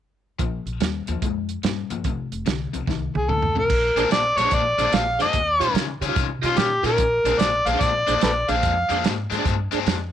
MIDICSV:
0, 0, Header, 1, 6, 480
1, 0, Start_track
1, 0, Tempo, 411805
1, 459, Time_signature, 4, 2, 24, 8
1, 11797, End_track
2, 0, Start_track
2, 0, Title_t, "Harmonica"
2, 0, Program_c, 0, 22
2, 3690, Note_on_c, 0, 68, 60
2, 3837, Note_on_c, 0, 69, 64
2, 3855, Note_off_c, 0, 68, 0
2, 4150, Note_off_c, 0, 69, 0
2, 4174, Note_on_c, 0, 70, 76
2, 4761, Note_off_c, 0, 70, 0
2, 4797, Note_on_c, 0, 74, 95
2, 5106, Note_on_c, 0, 73, 86
2, 5124, Note_off_c, 0, 74, 0
2, 5289, Note_on_c, 0, 74, 92
2, 5306, Note_off_c, 0, 73, 0
2, 5774, Note_on_c, 0, 77, 99
2, 5791, Note_off_c, 0, 74, 0
2, 6078, Note_off_c, 0, 77, 0
2, 6083, Note_on_c, 0, 75, 85
2, 6674, Note_off_c, 0, 75, 0
2, 7521, Note_on_c, 0, 65, 74
2, 7667, Note_on_c, 0, 67, 78
2, 7685, Note_off_c, 0, 65, 0
2, 7983, Note_off_c, 0, 67, 0
2, 7994, Note_on_c, 0, 70, 87
2, 8619, Note_on_c, 0, 74, 102
2, 8636, Note_off_c, 0, 70, 0
2, 8943, Note_on_c, 0, 77, 93
2, 8960, Note_off_c, 0, 74, 0
2, 9092, Note_on_c, 0, 74, 106
2, 9110, Note_off_c, 0, 77, 0
2, 9578, Note_off_c, 0, 74, 0
2, 9596, Note_on_c, 0, 69, 63
2, 9596, Note_on_c, 0, 71, 63
2, 9596, Note_on_c, 0, 74, 91
2, 9679, Note_off_c, 0, 69, 0
2, 9683, Note_off_c, 0, 71, 0
2, 9904, Note_on_c, 0, 77, 93
2, 9921, Note_off_c, 0, 74, 0
2, 10543, Note_off_c, 0, 77, 0
2, 11797, End_track
3, 0, Start_track
3, 0, Title_t, "Tonewheel organ"
3, 0, Program_c, 1, 16
3, 4631, Note_on_c, 1, 68, 64
3, 4632, Note_on_c, 1, 62, 72
3, 4634, Note_on_c, 1, 72, 74
3, 4712, Note_off_c, 1, 62, 0
3, 4712, Note_off_c, 1, 68, 0
3, 4713, Note_off_c, 1, 72, 0
3, 5102, Note_on_c, 1, 68, 63
3, 5102, Note_on_c, 1, 72, 74
3, 5146, Note_off_c, 1, 68, 0
3, 5146, Note_off_c, 1, 72, 0
3, 5183, Note_on_c, 1, 62, 56
3, 5184, Note_on_c, 1, 68, 53
3, 5186, Note_on_c, 1, 72, 67
3, 5269, Note_off_c, 1, 62, 0
3, 5269, Note_off_c, 1, 68, 0
3, 5270, Note_off_c, 1, 72, 0
3, 5571, Note_on_c, 1, 62, 65
3, 5571, Note_on_c, 1, 68, 58
3, 5575, Note_on_c, 1, 72, 74
3, 5661, Note_off_c, 1, 68, 0
3, 5662, Note_off_c, 1, 62, 0
3, 5663, Note_off_c, 1, 72, 0
3, 6046, Note_on_c, 1, 68, 61
3, 6050, Note_on_c, 1, 72, 73
3, 6053, Note_on_c, 1, 62, 68
3, 6139, Note_off_c, 1, 68, 0
3, 6141, Note_off_c, 1, 72, 0
3, 6142, Note_off_c, 1, 62, 0
3, 6523, Note_on_c, 1, 73, 77
3, 6524, Note_on_c, 1, 65, 72
3, 6530, Note_on_c, 1, 67, 59
3, 6617, Note_off_c, 1, 65, 0
3, 6617, Note_off_c, 1, 73, 0
3, 6621, Note_off_c, 1, 67, 0
3, 7005, Note_on_c, 1, 67, 75
3, 7016, Note_on_c, 1, 73, 90
3, 7057, Note_off_c, 1, 67, 0
3, 7062, Note_off_c, 1, 73, 0
3, 7092, Note_on_c, 1, 73, 83
3, 7096, Note_on_c, 1, 65, 72
3, 7098, Note_on_c, 1, 67, 66
3, 7183, Note_off_c, 1, 73, 0
3, 7184, Note_off_c, 1, 65, 0
3, 7185, Note_off_c, 1, 67, 0
3, 7477, Note_on_c, 1, 75, 67
3, 7478, Note_on_c, 1, 67, 62
3, 7482, Note_on_c, 1, 65, 64
3, 7573, Note_off_c, 1, 75, 0
3, 7574, Note_off_c, 1, 67, 0
3, 7576, Note_off_c, 1, 65, 0
3, 7961, Note_on_c, 1, 67, 59
3, 7962, Note_on_c, 1, 65, 67
3, 7963, Note_on_c, 1, 70, 74
3, 8055, Note_off_c, 1, 65, 0
3, 8055, Note_off_c, 1, 67, 0
3, 8056, Note_off_c, 1, 70, 0
3, 8459, Note_on_c, 1, 62, 71
3, 8460, Note_on_c, 1, 72, 78
3, 8465, Note_on_c, 1, 68, 66
3, 8543, Note_off_c, 1, 62, 0
3, 8544, Note_off_c, 1, 72, 0
3, 8546, Note_off_c, 1, 68, 0
3, 8934, Note_on_c, 1, 68, 69
3, 8936, Note_on_c, 1, 72, 72
3, 8979, Note_off_c, 1, 68, 0
3, 8980, Note_off_c, 1, 72, 0
3, 9017, Note_on_c, 1, 68, 52
3, 9018, Note_on_c, 1, 62, 64
3, 9024, Note_on_c, 1, 72, 70
3, 9103, Note_off_c, 1, 62, 0
3, 9103, Note_off_c, 1, 68, 0
3, 9106, Note_off_c, 1, 72, 0
3, 9408, Note_on_c, 1, 72, 76
3, 9412, Note_on_c, 1, 62, 70
3, 9414, Note_on_c, 1, 68, 59
3, 9496, Note_off_c, 1, 72, 0
3, 9498, Note_off_c, 1, 62, 0
3, 9499, Note_off_c, 1, 68, 0
3, 9890, Note_on_c, 1, 68, 63
3, 9891, Note_on_c, 1, 62, 71
3, 9894, Note_on_c, 1, 72, 75
3, 9976, Note_off_c, 1, 68, 0
3, 9977, Note_off_c, 1, 62, 0
3, 9978, Note_off_c, 1, 72, 0
3, 10381, Note_on_c, 1, 68, 66
3, 10386, Note_on_c, 1, 72, 76
3, 10391, Note_on_c, 1, 62, 72
3, 10461, Note_off_c, 1, 68, 0
3, 10463, Note_off_c, 1, 72, 0
3, 10466, Note_off_c, 1, 62, 0
3, 10866, Note_on_c, 1, 72, 86
3, 10868, Note_on_c, 1, 68, 75
3, 10901, Note_off_c, 1, 72, 0
3, 10902, Note_off_c, 1, 68, 0
3, 10936, Note_on_c, 1, 62, 64
3, 10939, Note_on_c, 1, 68, 64
3, 10940, Note_on_c, 1, 74, 74
3, 11019, Note_off_c, 1, 62, 0
3, 11020, Note_off_c, 1, 68, 0
3, 11021, Note_off_c, 1, 74, 0
3, 11335, Note_on_c, 1, 72, 86
3, 11337, Note_on_c, 1, 62, 74
3, 11338, Note_on_c, 1, 68, 71
3, 11416, Note_off_c, 1, 72, 0
3, 11417, Note_off_c, 1, 62, 0
3, 11417, Note_off_c, 1, 68, 0
3, 11797, End_track
4, 0, Start_track
4, 0, Title_t, "Overdriven electric guitar"
4, 0, Program_c, 2, 29
4, 454, Note_on_c, 2, 46, 67
4, 464, Note_on_c, 2, 53, 81
4, 906, Note_off_c, 2, 46, 0
4, 911, Note_off_c, 2, 53, 0
4, 940, Note_on_c, 2, 46, 71
4, 940, Note_on_c, 2, 55, 71
4, 1226, Note_off_c, 2, 46, 0
4, 1226, Note_off_c, 2, 55, 0
4, 1262, Note_on_c, 2, 46, 57
4, 1268, Note_on_c, 2, 53, 69
4, 1409, Note_off_c, 2, 46, 0
4, 1412, Note_off_c, 2, 53, 0
4, 1428, Note_on_c, 2, 46, 67
4, 1432, Note_on_c, 2, 56, 81
4, 1875, Note_off_c, 2, 46, 0
4, 1877, Note_off_c, 2, 56, 0
4, 1907, Note_on_c, 2, 46, 64
4, 1915, Note_on_c, 2, 55, 77
4, 2191, Note_off_c, 2, 46, 0
4, 2195, Note_off_c, 2, 55, 0
4, 2221, Note_on_c, 2, 46, 65
4, 2229, Note_on_c, 2, 53, 71
4, 2370, Note_off_c, 2, 46, 0
4, 2375, Note_off_c, 2, 53, 0
4, 2392, Note_on_c, 2, 41, 74
4, 2397, Note_on_c, 2, 48, 88
4, 2838, Note_off_c, 2, 41, 0
4, 2841, Note_off_c, 2, 48, 0
4, 2865, Note_on_c, 2, 41, 72
4, 2874, Note_on_c, 2, 50, 78
4, 3151, Note_off_c, 2, 41, 0
4, 3156, Note_off_c, 2, 50, 0
4, 3186, Note_on_c, 2, 41, 62
4, 3195, Note_on_c, 2, 48, 71
4, 3334, Note_off_c, 2, 41, 0
4, 3339, Note_off_c, 2, 48, 0
4, 3356, Note_on_c, 2, 41, 70
4, 3362, Note_on_c, 2, 51, 85
4, 3801, Note_off_c, 2, 41, 0
4, 3804, Note_off_c, 2, 51, 0
4, 3836, Note_on_c, 2, 41, 67
4, 3840, Note_on_c, 2, 50, 73
4, 4117, Note_off_c, 2, 41, 0
4, 4120, Note_off_c, 2, 50, 0
4, 4142, Note_on_c, 2, 41, 59
4, 4150, Note_on_c, 2, 48, 75
4, 4293, Note_off_c, 2, 41, 0
4, 4297, Note_off_c, 2, 48, 0
4, 4621, Note_on_c, 2, 62, 89
4, 4630, Note_on_c, 2, 60, 81
4, 4633, Note_on_c, 2, 56, 74
4, 4639, Note_on_c, 2, 46, 68
4, 4884, Note_off_c, 2, 62, 0
4, 4888, Note_off_c, 2, 60, 0
4, 4890, Note_off_c, 2, 56, 0
4, 4893, Note_off_c, 2, 46, 0
4, 5102, Note_on_c, 2, 62, 83
4, 5107, Note_on_c, 2, 60, 69
4, 5111, Note_on_c, 2, 56, 58
4, 5117, Note_on_c, 2, 46, 61
4, 5364, Note_off_c, 2, 62, 0
4, 5367, Note_off_c, 2, 60, 0
4, 5369, Note_off_c, 2, 56, 0
4, 5372, Note_off_c, 2, 46, 0
4, 5578, Note_on_c, 2, 62, 86
4, 5585, Note_on_c, 2, 60, 81
4, 5588, Note_on_c, 2, 56, 75
4, 5592, Note_on_c, 2, 46, 77
4, 5842, Note_off_c, 2, 62, 0
4, 5846, Note_off_c, 2, 60, 0
4, 5847, Note_off_c, 2, 56, 0
4, 5849, Note_off_c, 2, 46, 0
4, 6067, Note_on_c, 2, 62, 75
4, 6071, Note_on_c, 2, 60, 69
4, 6077, Note_on_c, 2, 56, 64
4, 6078, Note_on_c, 2, 46, 54
4, 6232, Note_off_c, 2, 62, 0
4, 6234, Note_off_c, 2, 60, 0
4, 6237, Note_off_c, 2, 46, 0
4, 6237, Note_off_c, 2, 56, 0
4, 6538, Note_on_c, 2, 65, 82
4, 6546, Note_on_c, 2, 61, 82
4, 6548, Note_on_c, 2, 55, 75
4, 6551, Note_on_c, 2, 51, 69
4, 6801, Note_off_c, 2, 65, 0
4, 6805, Note_off_c, 2, 61, 0
4, 6806, Note_off_c, 2, 55, 0
4, 6808, Note_off_c, 2, 51, 0
4, 7017, Note_on_c, 2, 65, 81
4, 7024, Note_on_c, 2, 61, 64
4, 7029, Note_on_c, 2, 55, 62
4, 7032, Note_on_c, 2, 51, 54
4, 7280, Note_off_c, 2, 65, 0
4, 7284, Note_off_c, 2, 61, 0
4, 7286, Note_off_c, 2, 55, 0
4, 7288, Note_off_c, 2, 51, 0
4, 7496, Note_on_c, 2, 65, 98
4, 7501, Note_on_c, 2, 61, 94
4, 7504, Note_on_c, 2, 55, 84
4, 7508, Note_on_c, 2, 51, 73
4, 7760, Note_off_c, 2, 65, 0
4, 7762, Note_off_c, 2, 61, 0
4, 7763, Note_off_c, 2, 55, 0
4, 7765, Note_off_c, 2, 51, 0
4, 7973, Note_on_c, 2, 65, 67
4, 7980, Note_on_c, 2, 55, 65
4, 7981, Note_on_c, 2, 61, 76
4, 7986, Note_on_c, 2, 51, 64
4, 8143, Note_off_c, 2, 65, 0
4, 8147, Note_off_c, 2, 55, 0
4, 8147, Note_off_c, 2, 61, 0
4, 8150, Note_off_c, 2, 51, 0
4, 8457, Note_on_c, 2, 62, 78
4, 8467, Note_on_c, 2, 60, 79
4, 8469, Note_on_c, 2, 56, 72
4, 8475, Note_on_c, 2, 46, 63
4, 8719, Note_off_c, 2, 62, 0
4, 8724, Note_off_c, 2, 60, 0
4, 8725, Note_off_c, 2, 56, 0
4, 8728, Note_off_c, 2, 46, 0
4, 8936, Note_on_c, 2, 62, 75
4, 8942, Note_on_c, 2, 60, 71
4, 8949, Note_on_c, 2, 56, 60
4, 8951, Note_on_c, 2, 46, 63
4, 9198, Note_off_c, 2, 62, 0
4, 9200, Note_off_c, 2, 60, 0
4, 9204, Note_off_c, 2, 56, 0
4, 9205, Note_off_c, 2, 46, 0
4, 9405, Note_on_c, 2, 62, 90
4, 9416, Note_on_c, 2, 60, 86
4, 9417, Note_on_c, 2, 56, 79
4, 9424, Note_on_c, 2, 46, 72
4, 9671, Note_off_c, 2, 62, 0
4, 9676, Note_off_c, 2, 60, 0
4, 9677, Note_off_c, 2, 56, 0
4, 9680, Note_off_c, 2, 46, 0
4, 9894, Note_on_c, 2, 60, 69
4, 9894, Note_on_c, 2, 62, 73
4, 9903, Note_on_c, 2, 56, 61
4, 9904, Note_on_c, 2, 46, 59
4, 10155, Note_off_c, 2, 60, 0
4, 10155, Note_off_c, 2, 62, 0
4, 10159, Note_off_c, 2, 56, 0
4, 10160, Note_off_c, 2, 46, 0
4, 10363, Note_on_c, 2, 62, 85
4, 10369, Note_on_c, 2, 60, 76
4, 10374, Note_on_c, 2, 46, 79
4, 10375, Note_on_c, 2, 56, 68
4, 10628, Note_off_c, 2, 62, 0
4, 10631, Note_off_c, 2, 60, 0
4, 10634, Note_off_c, 2, 46, 0
4, 10634, Note_off_c, 2, 56, 0
4, 10841, Note_on_c, 2, 62, 70
4, 10846, Note_on_c, 2, 60, 65
4, 10848, Note_on_c, 2, 56, 69
4, 10856, Note_on_c, 2, 46, 60
4, 11106, Note_off_c, 2, 62, 0
4, 11109, Note_off_c, 2, 56, 0
4, 11109, Note_off_c, 2, 60, 0
4, 11114, Note_off_c, 2, 46, 0
4, 11322, Note_on_c, 2, 62, 85
4, 11326, Note_on_c, 2, 60, 82
4, 11328, Note_on_c, 2, 56, 82
4, 11337, Note_on_c, 2, 46, 67
4, 11585, Note_off_c, 2, 62, 0
4, 11587, Note_off_c, 2, 60, 0
4, 11588, Note_off_c, 2, 56, 0
4, 11593, Note_off_c, 2, 46, 0
4, 11797, End_track
5, 0, Start_track
5, 0, Title_t, "Upright bass"
5, 0, Program_c, 3, 32
5, 457, Note_on_c, 3, 34, 68
5, 709, Note_off_c, 3, 34, 0
5, 765, Note_on_c, 3, 34, 66
5, 901, Note_off_c, 3, 34, 0
5, 941, Note_on_c, 3, 39, 67
5, 1192, Note_off_c, 3, 39, 0
5, 1264, Note_on_c, 3, 39, 66
5, 1393, Note_off_c, 3, 39, 0
5, 1420, Note_on_c, 3, 41, 74
5, 1803, Note_off_c, 3, 41, 0
5, 1906, Note_on_c, 3, 43, 71
5, 2156, Note_off_c, 3, 43, 0
5, 2225, Note_on_c, 3, 43, 70
5, 2355, Note_off_c, 3, 43, 0
5, 2383, Note_on_c, 3, 29, 77
5, 2635, Note_off_c, 3, 29, 0
5, 2705, Note_on_c, 3, 29, 67
5, 2835, Note_off_c, 3, 29, 0
5, 2870, Note_on_c, 3, 36, 75
5, 3119, Note_off_c, 3, 36, 0
5, 3189, Note_on_c, 3, 36, 75
5, 3318, Note_off_c, 3, 36, 0
5, 3351, Note_on_c, 3, 36, 80
5, 3601, Note_off_c, 3, 36, 0
5, 3673, Note_on_c, 3, 36, 72
5, 3801, Note_off_c, 3, 36, 0
5, 3833, Note_on_c, 3, 38, 75
5, 4082, Note_off_c, 3, 38, 0
5, 4137, Note_on_c, 3, 33, 76
5, 4272, Note_off_c, 3, 33, 0
5, 4314, Note_on_c, 3, 34, 85
5, 4585, Note_off_c, 3, 34, 0
5, 4611, Note_on_c, 3, 34, 72
5, 4760, Note_off_c, 3, 34, 0
5, 4784, Note_on_c, 3, 34, 80
5, 5059, Note_off_c, 3, 34, 0
5, 5092, Note_on_c, 3, 34, 80
5, 5241, Note_off_c, 3, 34, 0
5, 5267, Note_on_c, 3, 34, 78
5, 5541, Note_off_c, 3, 34, 0
5, 5577, Note_on_c, 3, 34, 79
5, 5724, Note_off_c, 3, 34, 0
5, 5742, Note_on_c, 3, 34, 77
5, 6018, Note_off_c, 3, 34, 0
5, 6064, Note_on_c, 3, 41, 86
5, 6207, Note_off_c, 3, 41, 0
5, 6220, Note_on_c, 3, 39, 83
5, 6496, Note_off_c, 3, 39, 0
5, 6534, Note_on_c, 3, 46, 76
5, 6681, Note_off_c, 3, 46, 0
5, 6692, Note_on_c, 3, 49, 84
5, 6971, Note_off_c, 3, 49, 0
5, 7009, Note_on_c, 3, 49, 80
5, 7158, Note_off_c, 3, 49, 0
5, 7182, Note_on_c, 3, 48, 83
5, 7457, Note_off_c, 3, 48, 0
5, 7498, Note_on_c, 3, 48, 78
5, 7643, Note_off_c, 3, 48, 0
5, 7652, Note_on_c, 3, 46, 81
5, 7931, Note_off_c, 3, 46, 0
5, 7964, Note_on_c, 3, 46, 86
5, 8114, Note_off_c, 3, 46, 0
5, 8143, Note_on_c, 3, 34, 80
5, 8416, Note_off_c, 3, 34, 0
5, 8442, Note_on_c, 3, 34, 74
5, 8593, Note_off_c, 3, 34, 0
5, 8614, Note_on_c, 3, 34, 86
5, 8890, Note_off_c, 3, 34, 0
5, 8925, Note_on_c, 3, 34, 85
5, 9073, Note_off_c, 3, 34, 0
5, 9099, Note_on_c, 3, 34, 90
5, 9373, Note_off_c, 3, 34, 0
5, 9420, Note_on_c, 3, 34, 82
5, 9562, Note_off_c, 3, 34, 0
5, 9583, Note_on_c, 3, 34, 75
5, 9854, Note_off_c, 3, 34, 0
5, 9894, Note_on_c, 3, 34, 82
5, 10038, Note_off_c, 3, 34, 0
5, 10063, Note_on_c, 3, 41, 88
5, 10333, Note_off_c, 3, 41, 0
5, 10372, Note_on_c, 3, 41, 68
5, 10515, Note_off_c, 3, 41, 0
5, 10542, Note_on_c, 3, 44, 87
5, 10812, Note_off_c, 3, 44, 0
5, 10853, Note_on_c, 3, 44, 73
5, 10995, Note_off_c, 3, 44, 0
5, 11018, Note_on_c, 3, 43, 82
5, 11289, Note_off_c, 3, 43, 0
5, 11345, Note_on_c, 3, 43, 78
5, 11481, Note_off_c, 3, 43, 0
5, 11495, Note_on_c, 3, 41, 74
5, 11766, Note_off_c, 3, 41, 0
5, 11797, End_track
6, 0, Start_track
6, 0, Title_t, "Drums"
6, 458, Note_on_c, 9, 36, 88
6, 458, Note_on_c, 9, 42, 67
6, 575, Note_off_c, 9, 36, 0
6, 575, Note_off_c, 9, 42, 0
6, 778, Note_on_c, 9, 42, 47
6, 894, Note_off_c, 9, 42, 0
6, 937, Note_on_c, 9, 42, 64
6, 953, Note_on_c, 9, 38, 86
6, 1054, Note_off_c, 9, 42, 0
6, 1069, Note_off_c, 9, 38, 0
6, 1250, Note_on_c, 9, 42, 53
6, 1367, Note_off_c, 9, 42, 0
6, 1422, Note_on_c, 9, 36, 88
6, 1424, Note_on_c, 9, 42, 67
6, 1539, Note_off_c, 9, 36, 0
6, 1540, Note_off_c, 9, 42, 0
6, 1734, Note_on_c, 9, 42, 50
6, 1851, Note_off_c, 9, 42, 0
6, 1903, Note_on_c, 9, 42, 75
6, 1918, Note_on_c, 9, 38, 94
6, 2019, Note_off_c, 9, 42, 0
6, 2034, Note_off_c, 9, 38, 0
6, 2218, Note_on_c, 9, 42, 52
6, 2335, Note_off_c, 9, 42, 0
6, 2380, Note_on_c, 9, 42, 69
6, 2386, Note_on_c, 9, 36, 91
6, 2497, Note_off_c, 9, 42, 0
6, 2502, Note_off_c, 9, 36, 0
6, 2704, Note_on_c, 9, 42, 52
6, 2821, Note_off_c, 9, 42, 0
6, 2869, Note_on_c, 9, 42, 64
6, 2885, Note_on_c, 9, 38, 96
6, 2986, Note_off_c, 9, 42, 0
6, 3001, Note_off_c, 9, 38, 0
6, 3191, Note_on_c, 9, 42, 55
6, 3307, Note_off_c, 9, 42, 0
6, 3350, Note_on_c, 9, 36, 93
6, 3369, Note_on_c, 9, 38, 49
6, 3467, Note_off_c, 9, 36, 0
6, 3485, Note_off_c, 9, 38, 0
6, 3673, Note_on_c, 9, 48, 61
6, 3789, Note_off_c, 9, 48, 0
6, 3829, Note_on_c, 9, 47, 58
6, 3946, Note_off_c, 9, 47, 0
6, 3991, Note_on_c, 9, 45, 69
6, 4108, Note_off_c, 9, 45, 0
6, 4157, Note_on_c, 9, 43, 64
6, 4273, Note_off_c, 9, 43, 0
6, 4309, Note_on_c, 9, 49, 86
6, 4310, Note_on_c, 9, 36, 98
6, 4426, Note_off_c, 9, 36, 0
6, 4426, Note_off_c, 9, 49, 0
6, 4628, Note_on_c, 9, 42, 58
6, 4744, Note_off_c, 9, 42, 0
6, 4790, Note_on_c, 9, 42, 71
6, 4805, Note_on_c, 9, 38, 99
6, 4906, Note_off_c, 9, 42, 0
6, 4921, Note_off_c, 9, 38, 0
6, 5101, Note_on_c, 9, 42, 61
6, 5116, Note_on_c, 9, 38, 31
6, 5218, Note_off_c, 9, 42, 0
6, 5233, Note_off_c, 9, 38, 0
6, 5258, Note_on_c, 9, 42, 79
6, 5266, Note_on_c, 9, 36, 91
6, 5374, Note_off_c, 9, 42, 0
6, 5382, Note_off_c, 9, 36, 0
6, 5582, Note_on_c, 9, 42, 64
6, 5699, Note_off_c, 9, 42, 0
6, 5741, Note_on_c, 9, 42, 81
6, 5756, Note_on_c, 9, 38, 108
6, 5858, Note_off_c, 9, 42, 0
6, 5873, Note_off_c, 9, 38, 0
6, 6060, Note_on_c, 9, 42, 61
6, 6177, Note_off_c, 9, 42, 0
6, 6213, Note_on_c, 9, 42, 71
6, 6223, Note_on_c, 9, 36, 97
6, 6330, Note_off_c, 9, 42, 0
6, 6339, Note_off_c, 9, 36, 0
6, 6539, Note_on_c, 9, 42, 56
6, 6656, Note_off_c, 9, 42, 0
6, 6702, Note_on_c, 9, 42, 70
6, 6717, Note_on_c, 9, 38, 97
6, 6818, Note_off_c, 9, 42, 0
6, 6833, Note_off_c, 9, 38, 0
6, 7020, Note_on_c, 9, 42, 59
6, 7136, Note_off_c, 9, 42, 0
6, 7180, Note_on_c, 9, 42, 69
6, 7184, Note_on_c, 9, 36, 101
6, 7195, Note_on_c, 9, 38, 29
6, 7297, Note_off_c, 9, 42, 0
6, 7301, Note_off_c, 9, 36, 0
6, 7312, Note_off_c, 9, 38, 0
6, 7499, Note_on_c, 9, 42, 55
6, 7615, Note_off_c, 9, 42, 0
6, 7653, Note_on_c, 9, 42, 69
6, 7668, Note_on_c, 9, 38, 99
6, 7770, Note_off_c, 9, 42, 0
6, 7785, Note_off_c, 9, 38, 0
6, 7974, Note_on_c, 9, 42, 53
6, 7989, Note_on_c, 9, 38, 29
6, 8091, Note_off_c, 9, 42, 0
6, 8106, Note_off_c, 9, 38, 0
6, 8135, Note_on_c, 9, 42, 78
6, 8141, Note_on_c, 9, 36, 102
6, 8252, Note_off_c, 9, 42, 0
6, 8258, Note_off_c, 9, 36, 0
6, 8456, Note_on_c, 9, 42, 60
6, 8572, Note_off_c, 9, 42, 0
6, 8619, Note_on_c, 9, 42, 79
6, 8634, Note_on_c, 9, 38, 96
6, 8735, Note_off_c, 9, 42, 0
6, 8751, Note_off_c, 9, 38, 0
6, 8932, Note_on_c, 9, 42, 64
6, 9049, Note_off_c, 9, 42, 0
6, 9101, Note_on_c, 9, 36, 93
6, 9101, Note_on_c, 9, 42, 77
6, 9116, Note_on_c, 9, 38, 29
6, 9217, Note_off_c, 9, 36, 0
6, 9217, Note_off_c, 9, 42, 0
6, 9233, Note_off_c, 9, 38, 0
6, 9415, Note_on_c, 9, 42, 64
6, 9531, Note_off_c, 9, 42, 0
6, 9574, Note_on_c, 9, 42, 85
6, 9589, Note_on_c, 9, 38, 113
6, 9690, Note_off_c, 9, 42, 0
6, 9705, Note_off_c, 9, 38, 0
6, 9891, Note_on_c, 9, 42, 59
6, 10008, Note_off_c, 9, 42, 0
6, 10057, Note_on_c, 9, 42, 72
6, 10061, Note_on_c, 9, 36, 97
6, 10174, Note_off_c, 9, 42, 0
6, 10177, Note_off_c, 9, 36, 0
6, 10374, Note_on_c, 9, 42, 55
6, 10491, Note_off_c, 9, 42, 0
6, 10541, Note_on_c, 9, 42, 74
6, 10556, Note_on_c, 9, 38, 98
6, 10657, Note_off_c, 9, 42, 0
6, 10672, Note_off_c, 9, 38, 0
6, 10862, Note_on_c, 9, 42, 56
6, 10877, Note_on_c, 9, 38, 30
6, 10979, Note_off_c, 9, 42, 0
6, 10994, Note_off_c, 9, 38, 0
6, 11021, Note_on_c, 9, 36, 93
6, 11023, Note_on_c, 9, 42, 71
6, 11038, Note_on_c, 9, 38, 26
6, 11138, Note_off_c, 9, 36, 0
6, 11139, Note_off_c, 9, 42, 0
6, 11154, Note_off_c, 9, 38, 0
6, 11330, Note_on_c, 9, 42, 52
6, 11446, Note_off_c, 9, 42, 0
6, 11498, Note_on_c, 9, 42, 74
6, 11513, Note_on_c, 9, 38, 107
6, 11615, Note_off_c, 9, 42, 0
6, 11630, Note_off_c, 9, 38, 0
6, 11797, End_track
0, 0, End_of_file